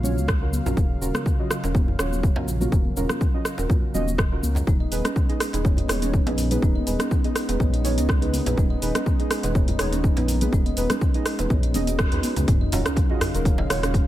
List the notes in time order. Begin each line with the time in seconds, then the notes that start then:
Already playing: A#1 C#3 F#3 F5
0.03 C#4 F4 F#4 C#5, high conga, low conga, cabasa
0.17 C#2, high conga, cabasa
0.28 kick, cross-stick, cabasa
0.41 C#4 F4 F#4 A#4
0.53 high conga, cabasa
0.66 A#1 C#4 F4 F#4 A#4, djembe slap, djembe tone, cabasa
0.77 D#1, kick, cabasa
1.01 D#1 C#4 F4 F#4 A#4, cabasa
1.14 cross-stick, high conga, low conga, cabasa
1.26 kick, cabasa
1.39 C#4 F4 F#4 D#5
1.51 cross-stick, cabasa
1.64 D#1 C#4 F4 F#4 A#4, djembe slap, cabasa
1.75 kick, djembe tone, high conga, cabasa
1.88 djembe bass
1.99 D#1 C#4 F4 F#4 C#5, cross-stick, djembe tone, cabasa
2.13 high conga, cabasa
2.23 kick, cabasa
2.36 A#1 C#4 F4 F#4 A#4, djembe slap, djembe tone, high conga
2.48 djembe tone, cabasa
2.61 C#4 F4 F#4 A#4, high conga, low conga, cabasa
2.72 D#1, kick, djembe tone, cabasa
2.85 high conga
2.97 D#1 C#4 F4 F#4 A#4, djembe tone, cabasa
3.09 cross-stick, high conga, low conga, cabasa
3.21 kick, cabasa
3.34 C#4 F4 F#4 D#5
3.45 cross-stick, cabasa
3.58 D#1 C#4 F4 F#4 A#4, djembe slap, cabasa
3.69 kick, high conga, djembe bass, cabasa
3.94 D#1 C#4 F4 F#4 D#5, high conga, low conga, cabasa
4.07 high conga, cabasa
4.18 kick, cross-stick, cabasa
4.32 C#4 F4 F#4 A#4
4.43 C#2, high conga, cabasa
4.55 djembe slap, djembe tone, cabasa
4.67 D#1 G#3 B3 D#4, kick, cabasa
4.80 D#5
4.92 D#1 B3 D#4 G#4 B4, open hi-hat, cabasa
5.05 C#4, cross-stick, closed hi-hat, high conga, low conga, cabasa
5.16 kick, cabasa
5.29 B3 D#4 G#4 D#5, closed hi-hat
5.40 D#4, cross-stick, open hi-hat, cabasa
5.53 D#1 B3 D#4 G#4 B4, closed hi-hat, djembe slap, cabasa
5.65 C#5, kick, djembe tone, high conga, cabasa
5.77 D#5, closed hi-hat, djembe bass
5.88 D#1 B3 D#4 G#4 C#5, cross-stick, open hi-hat, djembe tone, cabasa
6.02 C#4, closed hi-hat, high conga, cabasa
6.14 kick, cabasa
6.26 A#1 B3 C#4 D#4 G#4 B4, closed hi-hat, djembe slap, high conga, djembe tone
6.37 A#4, open hi-hat, djembe tone, cabasa
6.51 B3 D#4 G#4 B4, closed hi-hat, high conga, low conga, cabasa
6.62 D#1 D#4, kick, djembe tone, cabasa
6.75 D#5, high conga
6.87 D#1 B3 D#4 G#4 B4, open hi-hat, djembe tone, cabasa
6.99 C#4, cross-stick, closed hi-hat, high conga, low conga, cabasa
7.11 kick, cabasa
7.24 B3 D#4 G#4 D#5, closed hi-hat
7.36 D#4, cross-stick, open hi-hat, cabasa
7.49 D#1 B3 D#4 G#4 B4, closed hi-hat, djembe slap, cabasa
7.60 A#1 C#5, kick, high conga, djembe bass, cabasa
7.73 D#5, closed hi-hat
7.84 B3 D#4 G#4 C#5, open hi-hat, high conga, low conga, cabasa
7.97 C#2 C#4, closed hi-hat, high conga, cabasa
8.09 kick, cross-stick, cabasa
8.22 B3 C#4 D#4 G#4 B4, closed hi-hat
8.33 A#4, open hi-hat, high conga, cabasa
8.46 A#1 B3 D#4 G#4 B4, closed hi-hat, djembe slap, djembe tone, cabasa
8.57 D#1 D#4, kick, cabasa
8.70 D#5
8.82 D#1 B3 D#4 G#4 B4, open hi-hat, cabasa
8.95 C#4, cross-stick, closed hi-hat, high conga, low conga, cabasa
9.06 kick, cabasa
9.20 B3 D#4 G#4 D#5, closed hi-hat
9.31 D#4, cross-stick, open hi-hat, cabasa
9.43 D#1 B3 D#4 G#4 B4, closed hi-hat, djembe slap, cabasa
9.55 C#5, kick, djembe tone, high conga, cabasa
9.68 D#5, closed hi-hat, djembe bass
9.79 D#1 B3 D#4 G#4 C#5, cross-stick, open hi-hat, djembe tone, cabasa
9.93 C#4, closed hi-hat, high conga, cabasa
10.04 kick, cabasa
10.17 A#1 B3 C#4 D#4 G#4 B4, closed hi-hat, djembe slap, high conga, djembe tone
10.28 A#4, open hi-hat, djembe tone, cabasa
10.41 B3 D#4 G#4 B4, closed hi-hat, high conga, low conga, cabasa
10.53 D#1 D#4, kick, djembe tone, cabasa
10.66 D#5, closed hi-hat, high conga
10.76 D#1 B3 D#4 G#4 B4, open hi-hat, djembe tone, cabasa
10.90 C#4, cross-stick, closed hi-hat, high conga, low conga, cabasa
11.01 kick, cabasa
11.14 B3 D#4 G#4 D#5, closed hi-hat
11.26 D#4, cross-stick, open hi-hat, cabasa
11.39 D#1 B3 D#4 G#4 B4, closed hi-hat, djembe slap, cabasa
11.50 A#1 C#5, kick, high conga, djembe bass, cabasa
11.63 D#5, closed hi-hat
11.74 D#1 B3 C#4 D#4 G#4 D#5, open hi-hat, high conga, low conga, cabasa
11.87 F#4, closed hi-hat, high conga, cabasa
11.99 kick, cross-stick, cabasa
12.12 D#2 B3 D#4 F#4 G#4 B4, closed hi-hat
12.23 D#4, open hi-hat, high conga, cabasa
12.36 C#2, closed hi-hat, djembe slap, djembe tone, cabasa
12.48 D#1 C#3 F#3 D#4 F5, kick, closed hi-hat, sub drop, djembe tone, cabasa
12.61 D#5
12.72 D#1 C#4 F4 F#4 A#4, open hi-hat, djembe slap, djembe tone, cabasa
12.85 C#4, cross-stick, closed hi-hat, cabasa
12.97 kick, closed hi-hat, cabasa
13.10 C#4 F4 F#4 G#4 D#5, djembe tone
13.21 D#4, cross-stick, open hi-hat, djembe bass, cabasa
13.34 D#1 C#4 F4 F#4 A#4, closed hi-hat, djembe tone, cabasa
13.45 C#5, kick, closed hi-hat, cabasa
13.58 D#5, djembe slap, djembe tone
13.69 D#1 C#4 F4 F#4 C#5, cross-stick, open hi-hat, cabasa
13.83 C#4, cross-stick, closed hi-hat, cabasa
13.94 kick, closed hi-hat, djembe tone, cabasa